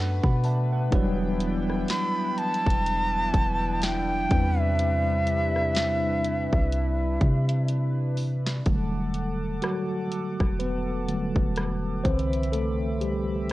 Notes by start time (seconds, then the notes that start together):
Already playing: F#2 A3 B3 D4 F#4 B4 F#5
0.24 B2 F#5 B5, kick
0.44 E5 A5, open hi-hat
0.72 B4 F#5
0.90 E1 E3 F#3 B3 D4 E4 G5, kick, closed hi-hat
0.95 G3 B4
1.40 closed hi-hat
1.70 cross-stick
1.88 B5, snare, closed hi-hat
2.38 A5, closed hi-hat
2.54 closed hi-hat
2.66 E1, kick, closed hi-hat
2.86 closed hi-hat
3.34 E1, kick, closed hi-hat
3.82 G5, snare, closed hi-hat
4.29 E2 C3 G3 C4 D4 E4 B4, kick, closed hi-hat
4.34 B4
4.60 E5
4.79 closed hi-hat
5.27 closed hi-hat
5.56 cross-stick
5.75 snare, closed hi-hat
6.25 closed hi-hat
6.53 C2, kick
6.73 closed hi-hat
7.21 C3, kick, closed hi-hat
7.49 closed hi-hat
7.69 closed hi-hat
8.17 open hi-hat
8.47 snare
8.66 E1 D3 F#3 G3 A3 A4 F#5 A5 D6, kick, closed hi-hat
9.14 closed hi-hat
9.62 F#3 F#4, cross-stick, closed hi-hat
10.12 closed hi-hat
10.40 E1, kick, cross-stick
10.59 B3 B4, closed hi-hat
11.08 D3 F#3 G3 A3, closed hi-hat
11.36 E1, kick
11.56 cross-stick, closed hi-hat
12.04 C2 D3 E3 C4 B4 C5 E5 B5 D6, kick, closed hi-hat
12.19 closed hi-hat
12.33 closed hi-hat
12.43 closed hi-hat
12.52 A3 A4, closed hi-hat
13.01 G3 G4, closed hi-hat
13.49 closed hi-hat